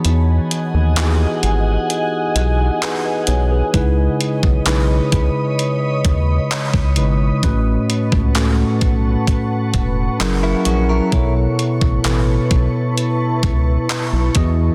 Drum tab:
HH |x-x-x-x-x-x-x-x-|x-x-x-x-x-x-x-x-|x-x-x-x-x-x-x-x-|x-x-x-x-x-x-x-x-|
CP |----x-------x---|----x-------x---|----x-------x---|----x-------x---|
BD |----------------|o--o--o---o--o--|o--o--o-o-o-----|o--o--o---o---o-|